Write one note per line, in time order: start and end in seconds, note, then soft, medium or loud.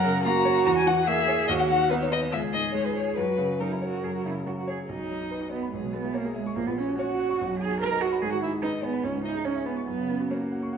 0.00 0.63 F#2 loud
0.00 0.23 A#4 loud
0.00 0.24 F#5 loud
0.04 0.37 C#3 medium
0.24 0.58 A#3 medium
0.24 1.05 F#4 loud
0.24 0.65 A#5 loud
0.45 0.66 C#5 medium
0.66 1.46 E2 medium
0.66 0.70 A#5 loud
0.77 0.89 G#5 loud
0.87 1.20 E3 medium
0.87 1.09 F#5 loud
1.06 1.40 A#3 medium
1.06 1.51 G#4 loud
1.06 1.47 E5 loud
1.28 1.49 C#5 medium
1.48 2.30 D#2 loud
1.48 1.92 F#4 loud
1.48 1.52 D#5 loud
1.59 1.63 F#5 loud
1.69 2.03 D#3 medium
1.69 1.90 F#5 loud
1.90 2.24 B3 medium
1.90 2.32 D#4 medium
1.90 1.95 B4 loud
2.02 2.06 C#5 loud
2.12 2.33 B4 medium
2.12 2.20 D#5 loud
2.32 3.14 C#2 medium
2.32 3.19 G#4 medium
2.32 2.40 E5 loud
2.53 2.87 G#2 medium
2.53 2.73 D#5 loud
2.74 3.08 G#3 medium
2.74 2.87 C#5 loud
2.85 2.95 B4 medium
2.95 3.17 C#5 medium
2.95 3.16 C#5 medium
3.16 4.01 F#2 medium
3.16 3.56 F#4 medium
3.16 3.62 B4 loud
3.38 3.73 C#3 medium
3.60 3.95 F#3 medium
3.60 3.73 D#4 medium
3.60 4.68 A#4 medium
3.71 3.82 E4 medium
3.82 4.05 F#4 medium
3.82 4.16 C#5 medium
4.03 4.87 F#2 medium
4.03 4.14 G#4 medium
4.16 4.25 F#4 medium
4.25 4.59 C#3 medium
4.25 4.33 E4 medium
4.46 4.81 F#3 medium
4.46 4.51 F#4 medium
4.59 4.68 F#4 medium
4.67 4.77 G#4 medium
4.67 4.89 C#5 medium
4.89 5.70 B1 medium
4.89 5.49 D#4 medium
4.89 5.53 D#5 medium
5.00 5.17 F#2 soft
5.10 5.27 F#3 soft
5.21 5.38 D#4 soft
5.31 5.48 B4 soft
5.41 5.58 F#4 soft
5.52 5.71 B3 medium
5.52 5.72 B4 medium
5.52 5.69 D#5 soft
5.63 5.73 B5 soft
5.72 6.54 B1 soft
5.72 5.94 G#3 medium
5.72 5.95 G#4 medium
5.84 6.00 B2 soft
5.93 6.10 G#3 soft
5.93 6.15 B3 medium
5.93 6.15 B4 medium
6.04 6.21 E4 soft
6.13 6.35 A#3 medium
6.13 6.36 A#4 medium
6.13 6.31 C#5 soft
6.25 6.42 G#4 soft
6.35 6.57 G#3 medium
6.35 6.55 G#4 medium
6.35 6.52 E5 soft
6.46 6.56 C#6 medium
6.55 7.38 A#1 medium
6.55 6.68 A#3 loud
6.55 6.66 A#4 medium
6.67 6.84 A#2 medium
6.67 6.79 B3 medium
6.67 6.77 B4 medium
6.77 6.98 C#4 medium
6.77 6.95 C#4 medium
6.77 7.00 C#5 medium
6.89 7.05 F#4 medium
6.99 7.59 F#4 loud
6.99 7.16 C#5 medium
6.99 7.62 F#5 medium
7.10 7.26 F#4 medium
7.20 7.36 F#5 medium
7.30 7.40 C#6 medium
7.41 8.20 B1 medium
7.51 7.67 F#2 medium
7.60 7.78 D#4 soft
7.60 7.80 G#4 loud
7.60 7.80 G#5 medium
7.71 7.88 F#4 medium
7.81 8.02 A#4 loud
7.81 7.98 B4 medium
7.81 8.03 A#5 medium
7.91 8.08 D#5 medium
8.01 8.23 F#4 medium
8.01 8.18 F#5 soft
8.01 8.21 F#5 medium
8.12 8.22 B5 medium
8.22 9.01 G#2 medium
8.22 8.31 G#4 loud
8.22 8.32 G#5 medium
8.32 8.49 D#3 medium
8.32 8.41 F#4 medium
8.32 8.42 F#5 medium
8.42 8.59 D#4 medium
8.42 8.50 E4 medium
8.42 8.51 E5 medium
8.52 8.69 G#4 medium
8.62 8.70 D#4 medium
8.62 8.79 B4 medium
8.62 8.85 D#5 medium
8.73 8.89 D#5 medium
8.83 9.05 B3 medium
8.83 9.06 B4 medium
8.83 9.00 G#5 medium
8.93 9.04 B5 medium
9.04 9.85 C#2 medium
9.04 9.24 C#4 medium
9.04 9.24 C#5 medium
9.15 9.31 G#2 soft
9.25 9.46 D#4 medium
9.25 9.41 E4 soft
9.25 9.33 D#5 medium
9.35 9.51 G#4 soft
9.45 9.67 C#4 medium
9.45 9.62 C#5 soft
9.45 9.65 C#5 medium
9.55 9.72 E5 soft
9.66 9.86 B3 medium
9.66 9.86 B4 medium
9.66 9.83 G#5 soft
9.77 9.88 C#6 soft
9.87 10.78 F#2 medium
9.87 10.32 B3 medium
9.87 10.29 B4 medium
9.99 10.16 C#3 soft
10.09 10.26 C#4 soft
10.20 10.37 F#4 soft
10.30 10.78 A#3 medium
10.30 10.78 A#4 soft
10.30 10.48 C#5 soft
10.41 10.58 F#4 soft
10.52 10.69 F#5 soft
10.62 10.78 C#6 medium
10.73 10.78 F#5 soft